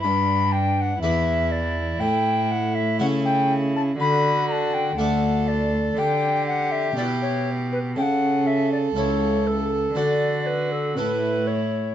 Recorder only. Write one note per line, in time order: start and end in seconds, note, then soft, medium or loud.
0.01 0.54 B5 medium
0.52 0.77 G5 medium
0.77 1.01 F#5 medium
0.77 0.82 G5 medium
1.01 1.53 E5 medium
1.51 2.01 D5 medium
2.00 2.52 G5 medium
2.51 2.76 F#5 medium
2.74 2.99 E5 medium
3.00 3.06 F#5 medium
3.25 3.53 G5 medium
3.76 3.82 A5 medium
4.00 4.48 B5 medium
4.48 4.75 A5 medium
4.48 4.53 A#5 medium
4.74 4.99 G5 medium
4.97 5.49 F#5 medium
5.48 5.99 D5 medium
5.98 6.46 G5 medium
6.47 6.73 F#5 medium
6.71 6.96 E5 medium
6.97 7.03 D5 medium
7.22 7.50 C#5 medium
7.72 7.78 B4 medium
7.98 8.03 G5 medium
8.02 8.48 F#5 medium
8.46 8.71 E5 medium
8.72 8.78 D5 medium
8.97 9.48 C#5 medium
9.47 9.98 A4 medium
9.96 10.48 D5 medium
10.46 10.73 B4 medium
10.71 10.98 A4 soft
10.96 11.48 B4 medium
11.47 11.95 C#5 medium